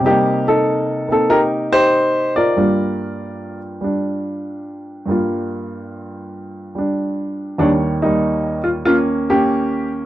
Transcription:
0.00 C3 G3
0.06 A#3 D#4 G4
0.11 D#4
0.48 D#4 A4
1.08 A#3 C4 D#4 A4
1.30 D#4 G4 A#4
1.72 D#4 G4 C5
2.36 F4 A#4 D5
2.56 G2 G3 A#3 F4
3.81 G3 D4
5.06 G2 G3 A#3
5.11 F4
6.75 G3 D4
7.58 D#2 D#3 G3 A#3 D4 C#5
8.02 G3 A#3 D#4
8.64 F4
8.85 A#3 C#4 F4
9.30 A#3 C#4 G4

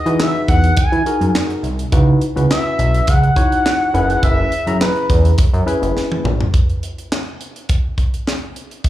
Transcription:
Already playing: D#5
0.06 E3 D#4 F#4 G#4 B4, closed hi-hat
0.20 E5, snare, clap
0.48 E2 F#5, kick, closed hi-hat
0.64 closed hi-hat
0.77 E3 G#5, kick, closed hi-hat
0.92 E3, closed hi-hat
1.06 D#4 F#4 G#4 A#4, closed hi-hat
1.21 F#2, closed hi-hat
1.35 snare, clap
1.50 closed hi-hat
1.63 C2, closed hi-hat
1.79 closed hi-hat
1.92 C#2 D#4 E4 F#4 B4, kick, closed hi-hat
2.21 closed hi-hat
2.36 C#2 C#4 E4 F#4 B4, closed hi-hat
2.51 E5, snare, clap
2.79 B1, closed hi-hat
2.94 closed hi-hat
3.07 C#2 F#5, kick, closed hi-hat
3.23 closed hi-hat
3.36 D#4 E4 F#4 C#5, kick, closed hi-hat
3.52 closed hi-hat
3.66 snare, clap
3.94 F#1 C#4 E4 G#4 B4, closed hi-hat
4.10 closed hi-hat
4.23 F#1 E5, kick, closed hi-hat
4.52 closed hi-hat
4.67 F#2 C#4 E4 G#4 A#5, closed hi-hat
4.81 B4, snare, clap
4.96 closed hi-hat
5.09 E2, kick, closed hi-hat
5.25 closed hi-hat
5.38 F#2, kick, closed hi-hat
5.53 F#2, closed hi-hat
5.66 C#4 E4 G#4 B4, closed hi-hat
5.82 F#1, closed hi-hat
5.97 snare
6.12 high tom
6.24 A#1, mid tom
6.41 floor tom
6.54 kick, closed hi-hat
6.70 closed hi-hat
6.83 closed hi-hat
6.98 closed hi-hat
7.12 snare, clap
7.41 closed hi-hat
7.56 closed hi-hat
7.69 kick, closed hi-hat
7.98 kick, closed hi-hat
8.14 closed hi-hat
8.28 snare, clap
8.56 closed hi-hat
8.71 closed hi-hat
8.84 kick, closed hi-hat

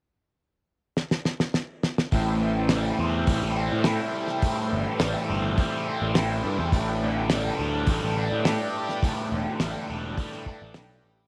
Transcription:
0.97 snare
1.11 snare
1.25 snare
1.40 snare
1.54 snare
1.83 snare
1.98 snare
2.12 A1 A2 A3 E4 C5 G5, kick, open hi-hat
2.41 E3
2.69 G3, snare, open hi-hat
2.99 E2 C4
3.27 A1 G3, kick, open hi-hat
3.43 A1
3.56 C4
3.72 A2
3.84 E4, snare, open hi-hat
4.14 G3
4.27 snare
4.42 A2, kick, open hi-hat
4.72 G1 E3
5.00 A1 G3, snare, open hi-hat
5.30 G1 C4
5.58 G3, kick, open hi-hat
5.88 C4
6.02 A1
6.15 E4, snare, open hi-hat
6.44 G2 G3
6.59 E2
6.72 A1 A2 D4 B4, kick, open hi-hat
7.03 D3
7.30 G3, snare, open hi-hat
7.59 D2 D4
7.87 A1 G3, kick, open hi-hat
8.03 A1
8.18 D4
8.31 A2
8.45 G4, snare, open hi-hat
8.77 G3
8.89 snare
9.03 A2, kick, open hi-hat
9.32 E1 D3
9.60 A1 G3, snare, open hi-hat
9.90 E1 D4
10.18 G3, kick, open hi-hat
10.32 snare
10.46 D4, kick
10.62 A1
10.74 B1 G4, snare, open hi-hat
11.04 A1 G3

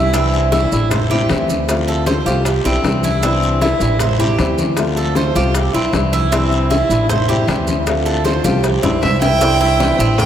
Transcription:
Already playing: C2 E3 G3 D4 E4
0.13 C3 E3 G3 C4 D4 E4, high bongo, high conga, long guiro, maracas
0.33 high conga, maracas
0.51 E3 G3 D4 E4, high bongo, high conga, short guiro, maracas
0.71 A1 E3 G3 D4 E4, high conga, short guiro, maracas
0.90 C5, muted nylon-string guitar stroke, high bongo, high conga, low conga, long guiro, maracas
1.10 G3 C4 E4 G4, high conga, low conga, maracas
1.29 D2 E3 G3 C4 E4, high bongo, low bongo, high conga, short guiro, maracas
1.48 high conga, short guiro, maracas
1.68 D3 A3 C4 F4, high bongo, high conga, long guiro, maracas
1.88 A4, high bongo, high conga, maracas
2.06 D3 A3 C4 F4 C5, high bongo, high conga, short guiro, maracas
2.26 C2 A3 C4 F4 G4, high bongo, high conga, short guiro, maracas
2.45 muted nylon-string guitar stroke, high bongo, high conga, long guiro, maracas
2.65 B1 E3 G3 C4 D4 E4, high bongo, high conga, maracas
2.84 C2 E3 G3 D4 E4, high bongo, low bongo, high conga, short guiro, maracas
3.03 E4, high conga, short guiro, maracas
3.22 C3 E3 G3 C4 D4 E4, high bongo, high conga, long guiro, maracas
3.42 high conga, maracas
3.61 E3 G3 D4 E4, high bongo, high conga, short guiro, maracas
3.80 A1 E3 G3 D4 E4, high conga, short guiro, maracas
3.99 C5, muted nylon-string guitar stroke, high bongo, high conga, low conga, long guiro, maracas
4.19 G3 C4 E4 G4, high conga, low conga, maracas
4.38 D2 E3 G3 C4 E4, high bongo, low bongo, high conga, short guiro, maracas
4.58 high conga, short guiro, maracas
4.76 D3 A3 C4 F4, high bongo, high conga, long guiro, maracas
4.96 A4, high bongo, high conga, maracas
5.15 D3 A3 C4 F4 C5, high bongo, high conga, short guiro, maracas
5.34 C2 A3 C4 F4 G4, high bongo, high conga, short guiro, maracas
5.54 muted nylon-string guitar stroke, high bongo, high conga, long guiro, maracas
5.73 B1 E3 G3 C4 D4 E4, high bongo, high conga, maracas
5.93 C2 E3 G3 D4 E4, high bongo, low bongo, high conga, short guiro, maracas
6.13 E4, high conga, short guiro, maracas
6.31 C3 E3 G3 C4 D4 E4, high bongo, high conga, long guiro, maracas
6.52 high conga, maracas
6.70 E3 G3 D4 E4, high bongo, high conga, short guiro, maracas
6.89 A1 E3 G3 D4 E4, high conga, short guiro, maracas
7.09 C5, muted nylon-string guitar stroke, high bongo, high conga, low conga, long guiro, maracas
7.29 G3 C4 E4 G4, high conga, low conga, maracas
7.47 D2 E3 G3 C4 E4, high bongo, low bongo, high conga, short guiro, maracas
7.67 high conga, short guiro, maracas
7.86 D3 A3 C4 F4, high bongo, high conga, long guiro, maracas
8.05 A4, high bongo, high conga, maracas
8.24 D3 A3 C4 F4 C5, high bongo, high conga, short guiro, maracas
8.44 C2 A3 C4 F4 G4, high bongo, high conga, short guiro, maracas
8.64 muted nylon-string guitar stroke, high bongo, long guiro, maracas
8.83 B1 E3 G3 C4 D4 E4, high bongo, low conga, maracas
9.01 C2 E3 G3 D4 E4 E5, low bongo, low conga, short guiro, maracas
9.22 E4 G5, low bongo, low conga, short guiro, maracas
9.40 C3 E3 G3 C4 D4 E4, cowbell, high conga, long guiro, maracas
9.60 G3 D4 E4, high conga, maracas
9.78 C3 E3 G3 D4 E4, cowbell, high conga, short guiro, maracas
9.98 A1 G3 C4 D4 E4, high conga, short guiro, maracas
10.18 G5, muted nylon-string guitar stroke, cowbell, high conga, low conga, long guiro, maracas

